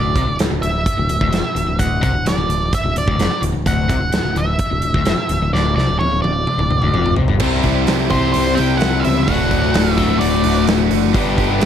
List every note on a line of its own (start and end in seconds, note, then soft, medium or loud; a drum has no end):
0.00 0.13 D1 medium
0.00 0.15 D2 medium
0.00 0.35 D5 loud
0.15 0.26 C2 medium
0.15 0.27 C3 medium
0.15 kick medium
0.15 closed hi-hat soft
0.27 0.38 D1 medium
0.27 0.39 D2 medium
0.39 0.50 D1 medium
0.39 0.50 D2 medium
0.39 snare loud
0.39 closed hi-hat medium
0.51 0.62 D1 medium
0.51 0.62 D2 medium
0.62 0.84 D1 medium
0.62 0.81 D2 medium
0.62 1.83 E5 medium
0.62 closed hi-hat soft
0.86 kick medium
0.86 closed hi-hat medium
0.97 1.08 D1 medium
0.97 1.09 D2 medium
1.09 1.20 D1 medium
1.09 1.20 D2 medium
1.09 closed hi-hat medium
1.21 1.31 D1 medium
1.21 1.32 D2 medium
1.21 kick medium
1.31 1.43 F1 medium
1.31 1.44 F2 medium
1.31 snare loud
1.31 closed hi-hat medium
1.45 muted picked electric bass stroke soft
1.45 muted overdriven electric guitar stroke medium
1.55 1.66 D1 medium
1.55 1.66 D2 medium
1.55 closed hi-hat medium
1.67 1.78 D1 medium
1.67 1.78 D2 medium
1.79 2.01 D1 medium
1.79 2.02 D2 medium
1.79 2.01 F#5 loud
1.79 kick medium
1.79 closed hi-hat medium
2.03 2.13 C2 medium
2.03 2.14 C3 loud
2.03 2.27 F#5 medium
2.03 kick medium
2.03 closed hi-hat medium
2.14 2.25 D1 medium
2.14 2.25 D2 medium
2.26 2.36 D1 medium
2.26 2.36 D2 medium
2.26 2.74 D5 medium
2.26 snare loud
2.26 closed hi-hat medium
2.36 2.47 D1 medium
2.36 2.48 D2 medium
2.48 2.70 D1 medium
2.48 2.68 D2 medium
2.48 closed hi-hat medium
2.73 2.98 E5 medium
2.73 kick medium
2.73 closed hi-hat medium
2.84 2.95 D1 medium
2.84 2.95 D2 medium
2.95 3.07 D1 medium
2.95 3.06 D2 medium
2.95 3.41 D5 medium
2.95 closed hi-hat medium
3.08 3.18 D1 medium
3.08 3.19 D2 medium
3.08 kick medium
3.18 3.30 F1 medium
3.18 3.31 F2 medium
3.18 snare medium
3.18 closed hi-hat medium
3.31 muted picked electric bass stroke soft
3.31 muted overdriven electric guitar stroke soft
3.42 3.53 D1 medium
3.42 3.52 D2 medium
3.42 closed hi-hat medium
3.53 3.65 D1 medium
3.53 3.65 D2 medium
3.66 3.88 D1 medium
3.66 3.89 D2 medium
3.66 4.39 F#5 loud
3.66 kick medium
3.66 closed hi-hat medium
3.89 3.99 C2 medium
3.89 4.01 C3 medium
3.89 kick medium
3.89 closed hi-hat soft
4.00 4.12 D1 medium
4.00 4.12 D2 medium
4.12 4.22 D1 medium
4.12 4.23 D2 medium
4.12 snare loud
4.12 closed hi-hat medium
4.22 4.34 D1 medium
4.22 4.35 D2 medium
4.35 4.57 D1 medium
4.35 4.55 D2 medium
4.35 5.53 E5 medium
4.35 closed hi-hat soft
4.59 kick medium
4.59 closed hi-hat medium
4.71 4.82 D1 medium
4.71 4.81 D2 medium
4.82 4.94 D1 medium
4.82 4.94 D2 medium
4.82 closed hi-hat soft
4.94 5.05 D1 medium
4.94 5.05 D2 medium
4.94 kick medium
5.05 5.17 F1 medium
5.05 5.17 F2 medium
5.05 snare loud
5.05 closed hi-hat medium
5.17 muted picked electric bass stroke soft
5.17 muted overdriven electric guitar stroke medium
5.29 5.40 D1 medium
5.29 5.41 D2 medium
5.29 closed hi-hat medium
5.40 5.52 D1 medium
5.40 5.52 D2 medium
5.52 5.75 D1 medium
5.52 5.76 D2 medium
5.52 5.75 D5 medium
5.52 snare medium
5.76 5.88 C2 medium
5.76 5.88 C3 medium
5.76 5.99 D5 medium
5.76 snare soft
5.88 6.00 D1 medium
5.88 6.00 D2 medium
5.99 6.11 D1 medium
5.99 6.11 D2 medium
5.99 6.22 C#5 medium
5.99 high tom medium
6.11 6.23 D1 medium
6.11 6.23 D2 medium
6.22 6.45 D1 medium
6.22 6.43 D2 medium
6.22 7.13 D5 medium
6.22 high tom medium
6.47 mid tom medium
6.58 6.70 D1 medium
6.58 6.70 D2 medium
6.58 mid tom medium
6.71 6.81 D1 medium
6.71 6.82 D2 medium
6.71 mid tom medium
6.81 6.93 D1 medium
6.81 6.94 D2 medium
6.81 mid tom medium
6.93 7.15 F1 medium
6.93 7.17 F2 medium
6.93 mid tom medium
7.06 floor tom medium
7.16 7.29 C2 medium
7.16 7.28 C3 medium
7.16 floor tom medium
7.28 7.40 G1 medium
7.28 7.40 G2 medium
7.28 floor tom medium
7.40 7.62 C2 medium
7.40 8.09 C3 medium
7.40 7.64 C3 medium
7.40 7.64 E3 medium
7.40 8.09 G3 medium
7.40 7.61 G3 medium
7.40 8.10 C4 medium
7.40 7.63 C4 medium
7.40 8.10 E4 medium
7.40 7.64 E4 medium
7.40 7.64 G4 medium
7.40 8.09 G4 medium
7.40 8.08 C5 medium
7.40 7.65 C5 medium
7.40 kick loud
7.40 crash loud
7.62 7.86 C2 medium
7.62 7.75 G3 medium
7.62 7.76 C4 medium
7.62 7.75 E4 medium
7.62 7.88 G4 medium
7.62 7.74 C5 medium
7.62 kick medium
7.62 open hi-hat soft
7.75 7.86 G3 soft
7.75 7.86 C4 soft
7.75 7.87 E4 medium
7.75 7.87 C5 medium
7.86 8.10 C2 medium
7.86 8.22 C3 medium
7.86 8.22 E3 medium
7.86 8.22 G3 loud
7.86 8.21 C4 medium
7.86 8.20 E4 medium
7.86 8.56 G4 medium
7.86 8.19 C5 medium
7.86 snare loud
7.86 open hi-hat medium
8.10 8.33 C2 medium
8.10 9.27 C3 medium
8.10 9.27 G3 medium
8.10 9.27 C4 medium
8.10 9.27 E4 medium
8.10 9.26 G4 medium
8.10 9.26 C5 medium
8.10 8.31 C5 medium
8.10 kick medium
8.10 open hi-hat medium
8.20 8.46 G3 soft
8.20 8.45 C4 soft
8.20 8.44 E4 soft
8.20 8.43 C5 soft
8.32 8.57 C2 medium
8.32 8.58 C5 medium
8.32 open hi-hat medium
8.44 8.55 G3 soft
8.44 8.56 C4 soft
8.44 8.57 E4 soft
8.44 8.57 C5 soft
8.55 8.69 G3 medium
8.55 8.67 C4 medium
8.55 8.67 E4 medium
8.55 8.80 G4 medium
8.55 8.65 C5 medium
8.55 8.77 G5 medium
8.55 open hi-hat medium
8.59 8.80 C2 medium
8.66 8.78 G3 soft
8.66 8.79 C4 soft
8.66 8.79 E4 soft
8.66 8.80 C5 medium
8.78 9.03 C3 medium
8.78 9.04 E3 medium
8.78 9.01 G3 medium
8.78 9.03 C4 medium
8.78 9.04 E4 medium
8.78 9.02 G4 loud
8.78 9.04 C5 medium
8.78 9.03 F#5 loud
8.78 open hi-hat medium
8.82 9.04 C2 medium
8.82 snare medium
9.00 9.15 G3 medium
9.00 9.26 G4 medium
9.00 9.26 E5 loud
9.04 9.27 C#2 medium
9.04 9.16 C4 medium
9.04 9.15 E4 medium
9.04 9.14 C5 medium
9.04 open hi-hat medium
9.15 9.26 G3 soft
9.15 9.28 C4 soft
9.15 9.28 E4 soft
9.15 9.27 C5 soft
9.23 9.74 D2 medium
9.23 9.96 D2 medium
9.23 9.71 A2 loud
9.23 9.51 D3 medium
9.23 9.48 A3 medium
9.23 9.93 F#5 loud
9.28 9.50 D1 medium
9.28 9.96 A2 medium
9.28 9.97 D3 medium
9.28 9.96 A3 medium
9.28 9.50 D4 medium
9.28 9.50 F#4 medium
9.28 9.95 F#4 medium
9.28 9.51 D5 medium
9.28 kick loud
9.28 open hi-hat medium
9.49 9.73 D1 medium
9.49 9.72 D3 medium
9.49 9.62 A3 medium
9.49 9.63 D4 medium
9.49 9.62 F#4 medium
9.49 9.60 D5 medium
9.49 kick medium
9.49 open hi-hat soft
9.61 9.73 D4 soft
9.61 9.74 F#4 medium
9.61 9.74 D5 soft
9.73 9.96 D1 medium
9.73 10.67 A2 medium
9.73 10.09 D3 medium
9.73 10.09 A3 medium
9.73 10.09 D4 medium
9.73 10.08 F#4 medium
9.73 10.07 D5 medium
9.73 snare loud
9.73 open hi-hat medium
9.93 11.12 F#4 medium
9.93 10.22 E5 loud
9.97 10.20 D1 medium
9.97 11.13 D2 medium
9.97 11.14 A2 medium
9.97 11.13 D3 medium
9.97 11.13 A3 medium
9.97 kick medium
9.97 open hi-hat medium
10.08 10.34 D4 soft
10.08 10.33 F#4 soft
10.08 10.32 D5 soft
10.19 10.43 D1 medium
10.19 10.63 D5 medium
10.19 open hi-hat medium
10.33 10.43 D4 soft
10.33 10.44 F#4 medium
10.33 10.44 D5 soft
10.43 10.66 D1 medium
10.43 10.66 D3 medium
10.43 10.56 A3 medium
10.43 10.56 D4 medium
10.43 10.56 F#4 medium
10.43 10.55 D5 medium
10.43 open hi-hat medium
10.56 10.68 D4 soft
10.56 10.68 F#4 soft
10.56 10.68 D5 soft
10.67 10.89 D1 medium
10.67 11.13 D2 medium
10.67 11.13 A2 medium
10.67 10.91 D3 medium
10.67 10.89 A3 medium
10.67 10.91 D4 medium
10.67 10.91 F#4 medium
10.67 10.92 D5 medium
10.67 snare loud
10.67 open hi-hat medium
10.90 11.13 F#1 medium
10.90 11.13 D3 medium
10.90 11.02 A3 medium
10.90 11.03 D4 medium
10.90 11.02 F#4 medium
10.90 11.00 D5 medium
10.90 open hi-hat medium
11.01 11.13 D4 soft
11.01 11.15 F#4 soft
11.01 11.14 D5 medium
11.13 11.36 G1 medium
11.13 11.65 G2 medium
11.13 11.61 G2 medium
11.13 11.65 D3 medium
11.13 11.61 D3 medium
11.13 11.35 G3 medium
11.13 11.65 G3 medium
11.13 11.65 B3 medium
11.13 11.38 B3 loud
11.13 11.37 D4 medium
11.13 11.65 D4 medium
11.13 11.38 G4 medium
11.13 11.65 G4 medium
11.13 11.38 B4 loud
11.13 kick loud
11.13 open hi-hat medium
11.36 11.60 G1 medium
11.36 11.49 G3 medium
11.36 11.59 B3 medium
11.36 11.49 D4 medium
11.36 11.49 G4 medium
11.36 11.47 B4 medium
11.36 kick medium
11.36 open hi-hat soft
11.49 11.60 D4 soft
11.49 11.61 G4 soft
11.49 11.61 B4 medium
11.61 11.65 G1 medium
11.61 11.65 G3 medium
11.61 11.65 B3 medium
11.61 11.65 D4 medium
11.61 11.65 G4 loud
11.61 open hi-hat medium